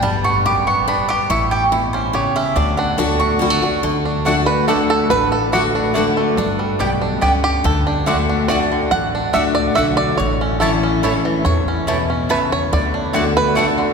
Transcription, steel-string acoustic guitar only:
\new Staff \with { instrumentName = "Steel-string acoustic guitar" } { \time 3/4 \key d \major \tempo 4 = 142 << { r2. | r2. | r4 <d a d' fis'>4 <d a d' fis'>8 <d' fis'>8 | r4 <d a d' fis'>4 <d a d' fis'>4 |
r4 <d a d' fis'>4 <d a d' fis'>4 | r2. | r4 <d a d' fis'>4 <d a d' fis'>4 | r4 <a d' fis'>4 <d a d' fis'>4 |
r4 <e a cis' e'>4 <e a cis' e'>4 | r2. | r4 <d a d' fis'>4 <d a d' fis'>4 | } \\ { g,4 fis,4 g,4 | a,4 b,4 cis4 | d2 r4 | d2 r4 |
a,2 r4 | g,4 b,4 cis'4 | d2 r4 | a,2 r4 |
a,2 r4 | e,4 b,4 cis4 | d2 r4 | } >> }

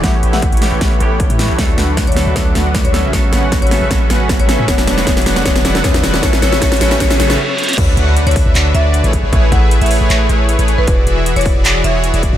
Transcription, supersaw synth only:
\new Staff \with { instrumentName = "Supersaw synth" } { \time 4/4 \key a \major \tempo 4 = 155 <a e' g' b' cis''>8 <a e' g' b' e''>8. <a e' g' b' cis''>8 <a e' g' b' cis''>16 <a e' g' b' cis''>8 <a e' g' b' cis''>8. <a e' g' b' cis''>8 <a e' g' b' cis''>16 | <d d' fis' b' e''>8 <d d' fis' b' fis''>8. <d d' fis' b' e''>8 <d d' fis' b' e''>16 <d d' fis' b' e''>8 <d d' fis' b' fis''>8. <d d' fis' b' e''>8 <cis cis' fis' b' e''>16 | <cis cis' fis' b' e''>8 <cis cis' fis' b' fis''>8. <cis cis' fis' b' e''>8 <cis cis' fis' b' e''>16 <cis cis' fis' b' e''>8 <cis cis' fis' b' fis''>8. <cis cis' fis' b' e''>8 <cis cis' fis' b' e''>16 | <d d' fis' b' e''>8 <d d' fis' b' fis''>8 <d d' fis' b' e''>8 <d d' fis' b' fis''>8 <d d' fis' b' e''>8 <d d' fis' b' fis''>8 <d d' fis' b' e''>8 <d d' fis' b' fis''>8 |
<cis cis' fis' b' e''>8 <cis cis' fis' b' e''>8 <cis cis' fis' b' e''>8 <cis cis' fis' b' e''>8 <cis cis' fis' b' e''>8 <cis cis' fis' b' e''>8 r4 | <d d' fis' b' e''>8 <d d' fis' b' fis''>8. <d d' fis' b' e''>8 <d d' fis' b' e''>16 <d d' fis' b' e''>8 <d d' fis' b' d''>8. <a e' gis' b' cis''>8 <a e' gis' b' cis''>16 | <a e' gis' b' cis''>8 <a e' gis' b' e''>8. <a e' gis' b' cis''>8 <a e' gis' b' cis''>16 <a e' gis' b' cis''>8 <a e' gis' b' cis''>8. <a e' gis' b' cis''>8 <a e' gis' b' cis''>16 | <e e' fis' gis' d''>8 <e e' fis' gis' e''>8. <e e' fis' gis' d''>8 <e e' fis' gis' d''>16 <e e' fis' gis' d''>8 <e e' fis' gis' cis''>8. <e e' fis' gis' d''>8 <e e' fis' gis' d''>16 | }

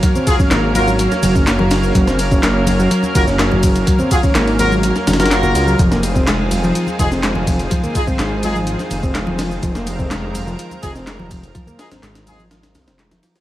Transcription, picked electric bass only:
\new Staff \with { instrumentName = "Picked electric bass" } { \clef bass \time 4/4 \key f \phrygian \tempo 4 = 125 ges16 c'16 r16 des'16 bes8. ges16 ges16 r16 ges16 des'16 bes16 ges8. | ges16 c'16 r16 des'16 bes8. ges16 ges16 r16 ges16 des'16 bes16 ges8. | ges16 c'16 r16 des'16 bes8. ges16 ges16 r16 ges16 ges16 r16 bes16 r16 ges16 | f16 bes16 r16 c'16 aes8. f16 f16 r8 c'16 aes16 f16 f16 r16 |
f16 bes16 r16 c'16 aes8. f16 f16 r8 c'16 aes16 f16 f16 r16 | f16 bes16 r16 c'16 aes8. f16 f16 r8 c'16 aes16 f16 f16 r16 | f16 bes16 r16 c'16 aes8. f16 f16 r8 c'16 aes16 f16 f16 r16 | }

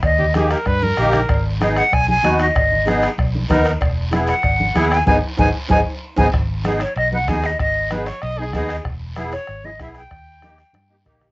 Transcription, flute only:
\new Staff \with { instrumentName = "Flute" } { \time 4/4 \key gis \minor \tempo 4 = 191 dis''4 r2. | r4. fis''8 gis''8 gis''4 dis''8~ | dis''4. r2 r8 | r4. fis''2 gis''8 |
gis''8 r8 gis''8 r8 gis''8 r4 gis''8 | r4. cis''8 dis''8 fis''8 gis''8 dis''8 | dis''4 r2. | r4. cis''4 dis''8 e''8 g''8~ |
g''2. r4 | }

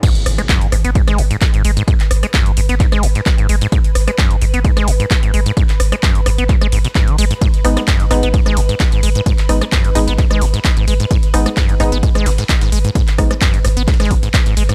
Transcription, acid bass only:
\new Staff \with { instrumentName = "Acid bass" } { \clef bass \time 4/4 \key gis \minor \tempo 4 = 130 gis,16 r8 gis16 fis,16 gis,16 gis,16 b16 gis,16 gis16 gis,16 gis,16 gis,16 gis,16 gis16 gis,16 | gis,16 r8 gis16 fis,16 gis,16 gis,16 b16 gis,16 gis16 gis,16 gis,16 gis,16 gis,16 gis16 gis,16 | gis,16 r8 gis16 fis,16 gis,16 gis,16 b16 gis,16 gis16 gis,16 gis,16 gis,16 gis,16 gis16 gis,16 | gis,16 r8 gis16 fis,16 gis,16 gis,16 b16 gis,16 gis16 gis,16 b,16 gis,16 dis16 gis16 gis,16 |
gis,16 r8 gis16 fis,16 gis,16 gis,16 b16 gis,16 gis16 gis,16 gis,16 gis,16 gis,16 gis16 gis,16 | gis,16 r8 gis16 fis,16 gis,16 gis,16 b16 gis,16 gis16 gis,16 gis,16 gis,16 gis,16 gis16 gis,16 | gis,16 r8 gis16 fis,16 gis,16 gis,16 b16 gis,16 gis16 gis,16 gis,16 gis,16 gis,16 gis16 gis,16 | gis,16 r8 gis16 fis,16 gis,16 gis,16 b16 gis,16 gis16 gis,16 gis,16 gis,16 gis,16 gis16 gis,16 | }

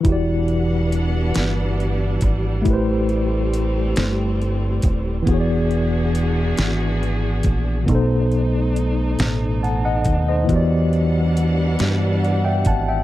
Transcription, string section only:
\new Staff \with { instrumentName = "String section" } { \time 6/8 \key e \minor \tempo 4. = 46 << { <e b d' fis''>2. | <a c'>2. | <e d' fis'>2. | a2. |
<e d' fis''>2. | } \\ { g2.~ | g2. | gis'2. | dis'2. |
g2. | } >> }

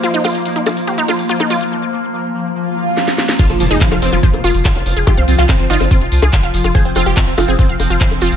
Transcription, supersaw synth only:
\new Staff \with { instrumentName = "Supersaw synth" } { \time 4/4 \key c \phrygian \tempo 4 = 143 r1 | r1 | f'16 f16 f16 ees'16 f16 f16 c'16 f16 f16 r4. r16 | g'16 c'16 c'16 f'16 c'16 c'16 ees'16 c'16 c'16 r4. r16 |
aes'16 c'16 c'16 g'16 c'16 c'16 f'16 c'16 c'16 r4. r16 | }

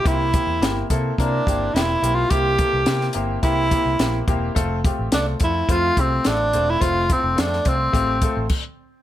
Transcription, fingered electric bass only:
\new Staff \with { instrumentName = "Fingered electric bass" } { \clef bass \time 4/4 \key c \mixolydian \tempo 4 = 106 c,8. e,16 g,,8 c8 c8 g,,8 e,,8 b,,8 | c,8. c,16 c8 g,,8 c,8. c,16 bes,,8 e,,8 | f,,8. a,,16 c,8 f,8 f,8 c,8 a,,8 e,,8 | f,,8. f,,16 f,8 c,8 a,,8. a,,16 r4 | }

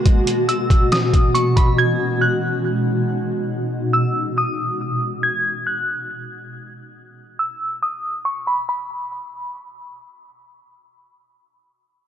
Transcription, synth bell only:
\new Staff \with { instrumentName = "Synth bell" } { \time 4/4 \key b \major \tempo 4 = 139 r4 e'''4 dis'''4 cis'''8 b''8 | gis'''4 fis'''4 r2 | r4 e'''4 dis'''2 | gis'''4 fis'''4 r2 |
r4 e'''4 dis'''4 cis'''8 b''8 | b''2. r4 | r1 | }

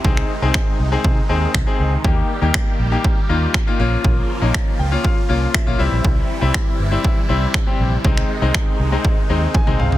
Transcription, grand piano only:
\new Staff \with { instrumentName = "Grand piano" } { \time 4/4 \key aes \major \tempo 4 = 120 << { r1 | r1 | r4. g''8 f''4 fes''4 | r1 |
r2. aes''8 f''8 | } \\ { <c' ees' aes'>8 r16 <c' ees' aes'>8. r16 <c' ees' aes'>8 r16 <c' ees' aes'>8 r16 <c' ees' aes'>8 r16 | <bes ees' g'>8 r16 <bes ees' g'>8. r16 <bes ees' g'>8 r16 <bes ees' f'>8 r16 <bes ees' f'>16 <bes des' f'>8~ | <bes des' f'>8 r16 <bes des' ees'>8. r16 <bes des' f'>8 r16 <bes des' f'>8 r16 <bes des' f'>16 <g c' e'>8~ | <g c' e'>8 r16 <g c' e'>8. r16 <g c' e'>8 r16 <g c' e'>8 r16 <g c' g'>8 r16 |
<aes c' ees'>8 r16 <aes c' ees'>8. r16 <aes c' ees'>8 r16 <aes c' ees'>8 r16 <aes c' ees'>8 r16 | } >> }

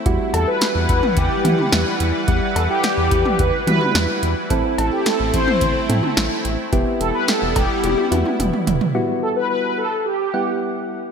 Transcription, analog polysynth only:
\new Staff \with { instrumentName = "Analog polysynth" } { \time 4/4 \key e \minor \tempo 4 = 108 r8 a'16 b'16 b'4 g'4. r8 | r8 a'16 g'4~ g'16 b'8 b'4 r8 | r8 a'16 g'16 a'8 c''4 r4. | r8 a'16 b'16 a'8 g'4. r4 |
r8 a'16 b'16 b'8 a'8 g'4. r8 | }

